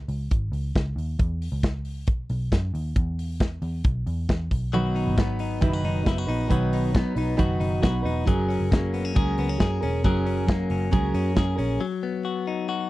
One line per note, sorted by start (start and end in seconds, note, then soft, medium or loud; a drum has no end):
0.08 0.27 C#2 medium
0.08 open hi-hat medium
0.31 0.50 G#1 medium
0.31 kick loud
0.31 closed hi-hat medium
0.52 0.71 C#2 medium
0.52 open hi-hat medium
0.75 0.94 C#2 loud
0.75 kick medium
0.75 snare medium
0.75 closed hi-hat medium
0.96 1.15 D#2 medium
0.96 open hi-hat medium
1.19 1.47 E2 loud
1.19 kick loud
1.19 closed hi-hat medium
1.42 open hi-hat medium
1.52 2.07 C#2 medium
1.63 kick loud
1.63 snare loud
1.63 closed hi-hat medium
1.85 open hi-hat medium
2.07 2.26 B1 medium
2.07 kick loud
2.07 closed hi-hat medium
2.30 2.49 B1 medium
2.30 open hi-hat medium
2.52 2.71 F#2 medium
2.52 kick medium
2.52 snare medium
2.52 closed hi-hat medium
2.74 2.93 D#2 medium
2.74 open hi-hat medium
2.96 3.59 E2 loud
2.96 kick loud
2.96 closed hi-hat medium
3.19 open hi-hat medium
3.40 kick medium
3.40 snare loud
3.40 closed hi-hat medium
3.62 3.81 E2 medium
3.62 open hi-hat medium
3.84 4.04 B1 medium
3.84 kick loud
3.84 closed hi-hat medium
4.07 4.26 E2 medium
4.07 open hi-hat medium
4.29 4.48 E2 medium
4.29 kick medium
4.29 snare loud
4.29 closed hi-hat medium
4.51 5.08 B1 medium
4.51 kick loud
4.51 open hi-hat medium
4.73 5.18 B2 medium
4.73 5.18 D#3 medium
4.73 6.50 F#3 medium
4.73 5.16 F#3 medium
4.73 5.17 B3 medium
4.73 5.18 D#4 medium
4.73 5.62 F#4 medium
4.73 5.18 B4 medium
4.73 closed hi-hat medium
4.95 5.39 D#4 soft
4.95 open hi-hat medium
5.07 5.59 G#1 medium
5.17 5.61 F#3 medium
5.17 5.61 B3 medium
5.17 6.95 B3 soft
5.17 5.61 D#4 medium
5.17 5.62 B4 medium
5.17 kick medium
5.17 snare loud
5.17 closed hi-hat medium
5.39 5.84 D#4 medium
5.39 open hi-hat medium
5.61 5.81 F#1 medium
5.61 6.06 B2 medium
5.61 6.06 D#3 medium
5.61 6.03 F#3 medium
5.61 6.03 B3 medium
5.61 6.04 D#4 medium
5.61 5.73 E4 medium
5.61 6.05 B4 medium
5.61 kick loud
5.61 closed hi-hat medium
5.73 6.07 F#4 medium
5.84 6.03 F#1 medium
5.84 6.27 D#4 medium
5.84 open hi-hat medium
6.04 6.25 F#1 medium
6.04 6.27 F#3 medium
6.04 6.27 B3 medium
6.04 6.26 D#4 medium
6.04 6.18 E4 medium
6.04 6.25 B4 medium
6.04 kick medium
6.04 snare loud
6.04 closed hi-hat medium
6.18 6.50 F#4 medium
6.27 6.47 A#1 medium
6.27 6.47 F#3 soft
6.27 6.48 B3 medium
6.27 6.49 D#4 soft
6.27 6.72 D#4 medium
6.27 6.49 B4 medium
6.27 open hi-hat medium
6.48 7.03 B1 medium
6.48 6.94 B2 medium
6.48 6.94 D#3 medium
6.48 6.93 F#3 medium
6.48 8.27 F#3 medium
6.48 6.93 B3 loud
6.48 6.94 D#4 medium
6.48 7.39 F#4 medium
6.48 6.94 B4 loud
6.48 kick medium
6.48 closed hi-hat medium
6.73 7.17 D#4 medium
6.73 open hi-hat medium
6.93 7.16 F#3 medium
6.93 7.15 B3 medium
6.93 8.33 B3 medium
6.93 7.15 D#4 medium
6.93 7.14 B4 medium
6.93 kick loud
6.93 snare loud
6.93 closed hi-hat medium
7.15 7.35 B1 medium
7.15 7.36 F#3 soft
7.15 7.36 B3 soft
7.15 7.36 D#4 soft
7.15 7.59 D#4 soft
7.15 7.37 B4 medium
7.15 open hi-hat medium
7.36 7.58 F#1 medium
7.36 7.82 B2 medium
7.36 7.82 D#3 medium
7.36 7.81 F#3 medium
7.36 7.81 B3 medium
7.36 7.82 D#4 medium
7.36 7.82 F#4 medium
7.36 7.82 B4 loud
7.36 kick loud
7.36 closed hi-hat medium
7.60 7.79 F#1 loud
7.60 8.04 D#4 medium
7.60 open hi-hat medium
7.81 8.02 B1 medium
7.81 8.04 F#3 medium
7.81 8.03 B3 medium
7.81 8.02 D#4 medium
7.81 8.27 F#4 medium
7.81 8.01 B4 medium
7.81 kick medium
7.81 snare medium
7.81 closed hi-hat medium
8.02 8.24 E1 medium
8.02 8.24 F#3 soft
8.02 8.26 B3 soft
8.02 8.27 D#4 medium
8.02 8.32 D#4 medium
8.02 8.26 B4 medium
8.02 open hi-hat medium
8.25 8.56 F#1 loud
8.25 8.70 F#3 medium
8.25 10.05 F#3 medium
8.25 8.71 C#4 medium
8.25 8.72 G#4 medium
8.25 9.15 G#4 medium
8.25 8.72 A#4 medium
8.25 kick loud
8.25 closed hi-hat medium
8.49 8.93 C#4 medium
8.49 open hi-hat medium
8.61 9.13 F#1 medium
8.71 9.14 F#3 medium
8.71 10.47 A#3 soft
8.71 9.14 C#4 medium
8.71 9.15 G#4 medium
8.71 9.15 A#4 medium
8.71 kick loud
8.71 snare loud
8.71 closed hi-hat medium
8.94 9.05 B3 medium
8.94 open hi-hat medium
9.05 9.38 C#4 soft
9.14 9.35 C#2 medium
9.14 9.57 F#3 medium
9.14 9.58 C#4 medium
9.14 9.58 G#4 medium
9.14 9.59 G#4 medium
9.14 9.60 A#4 medium
9.14 kick loud
9.14 closed hi-hat medium
9.38 9.57 C#2 medium
9.38 9.49 B3 medium
9.38 open hi-hat medium
9.49 9.82 C#4 soft
9.58 9.79 F#2 medium
9.58 9.81 F#3 medium
9.58 9.82 C#4 medium
9.58 9.80 G#4 medium
9.58 10.04 G#4 medium
9.58 9.79 A#4 medium
9.58 kick medium
9.58 snare loud
9.58 closed hi-hat medium
9.80 10.02 E1 medium
9.80 10.25 C#4 soft
9.80 10.04 C#4 soft
9.80 10.04 G#4 medium
9.80 10.04 A#4 medium
9.80 open hi-hat medium
10.04 10.67 F#1 loud
10.04 10.46 F#3 loud
10.04 11.80 F#3 medium
10.04 10.47 C#4 loud
10.04 10.47 G#4 medium
10.04 10.91 G#4 medium
10.04 10.48 A#4 loud
10.04 kick loud
10.04 closed hi-hat medium
10.26 10.70 C#4 medium
10.26 open hi-hat medium
10.47 10.91 F#3 medium
10.47 11.86 A#3 medium
10.47 10.90 C#4 medium
10.47 10.92 G#4 medium
10.47 10.92 A#4 medium
10.47 kick medium
10.47 snare loud
10.47 closed hi-hat medium
10.70 10.94 F#1 medium
10.70 11.13 C#4 soft
10.70 open hi-hat medium
10.91 11.12 C#2 medium
10.91 11.34 F#3 medium
10.91 11.34 C#4 loud
10.91 11.36 G#4 medium
10.91 11.35 G#4 medium
10.91 11.36 A#4 loud
10.91 kick loud
10.91 closed hi-hat medium
11.14 11.33 F#2 medium
11.14 11.57 C#4 medium
11.14 open hi-hat medium
11.34 11.55 F#2 loud
11.34 11.58 F#3 medium
11.34 11.57 C#4 medium
11.34 11.56 G#4 medium
11.34 11.86 G#4 medium
11.34 11.54 A#4 medium
11.34 kick medium
11.34 snare loud
11.34 closed hi-hat medium
11.56 11.77 A#1 medium
11.56 11.85 C#4 medium
11.56 11.81 C#4 medium
11.56 11.80 G#4 medium
11.56 11.79 A#4 medium
11.56 open hi-hat medium
11.81 12.90 F#3 medium
12.03 12.90 B3 medium
12.25 12.68 F#4 medium
12.47 12.90 D#4 medium
12.69 12.90 F#4 medium